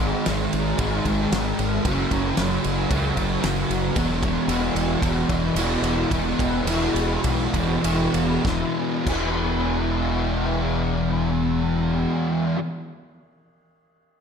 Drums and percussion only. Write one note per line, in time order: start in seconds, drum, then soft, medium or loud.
0.26 snare loud
0.26 ride medium
0.53 ride medium
0.79 kick loud
0.79 ride medium
1.05 kick medium
1.05 ride medium
1.32 snare loud
1.32 ride medium
1.59 ride medium
1.85 kick loud
1.85 ride medium
2.11 kick medium
2.11 ride medium
2.37 snare loud
2.37 ride medium
2.64 ride medium
2.91 kick loud
2.91 ride medium
3.17 kick medium
3.17 ride medium
3.44 snare loud
3.44 ride medium
3.71 ride medium
3.96 kick loud
3.96 ride medium
4.23 kick medium
4.23 ride medium
4.49 ride medium
4.76 ride medium
5.02 kick loud
5.02 ride medium
5.29 kick medium
5.29 ride medium
5.56 ride medium
5.84 ride medium
6.11 kick loud
6.11 ride medium
6.39 kick medium
6.39 ride medium
6.67 ride medium
6.96 ride medium
7.24 kick loud
7.24 ride medium
7.54 kick medium
7.54 ride medium
7.84 ride medium
8.14 ride medium
8.45 kick loud
8.45 snare medium
9.07 kick loud
9.07 crash medium